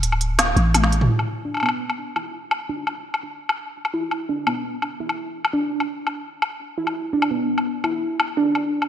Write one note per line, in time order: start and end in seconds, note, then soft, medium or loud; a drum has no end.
0.03 0.55 D1 loud
0.03 closed hi-hat medium
0.12 low woodblock medium
0.21 closed hi-hat soft
0.39 snare loud
0.39 closed hi-hat medium
0.39 low woodblock medium
0.56 1.09 A1 medium
0.56 closed hi-hat soft
0.74 closed hi-hat medium
0.74 high tom medium
0.74 low woodblock medium
0.84 snare medium
0.92 closed hi-hat soft
1.01 mid tom medium
1.09 1.20 E4 medium
1.19 low woodblock medium
1.45 1.62 D4 medium
1.54 low woodblock soft
1.57 low woodblock soft
1.60 1.80 B3 medium
1.60 low woodblock soft
1.63 low woodblock medium
1.66 low woodblock medium
1.69 low woodblock medium
1.90 low woodblock medium
2.16 2.33 E4 medium
2.16 low woodblock medium
2.51 low woodblock medium
2.69 3.39 D4 medium
2.87 low woodblock medium
3.14 low woodblock medium
3.49 low woodblock medium
3.85 low woodblock medium
3.94 4.04 E4 medium
4.11 low woodblock soft
4.29 4.46 D4 medium
4.47 4.64 B3 medium
4.47 low woodblock medium
4.82 low woodblock soft
5.00 5.17 E4 medium
5.09 low woodblock soft
5.45 low woodblock medium
5.53 6.23 D4 medium
5.80 low woodblock soft
6.07 low woodblock medium
6.42 low woodblock medium
6.78 6.88 E4 medium
6.87 low woodblock soft
7.13 7.30 D4 medium
7.22 low woodblock medium
7.31 7.48 B3 medium
7.58 low woodblock soft
7.84 8.01 E4 medium
7.84 low woodblock soft
8.20 low woodblock medium
8.37 8.88 D4 loud
8.55 low woodblock soft
8.82 low woodblock medium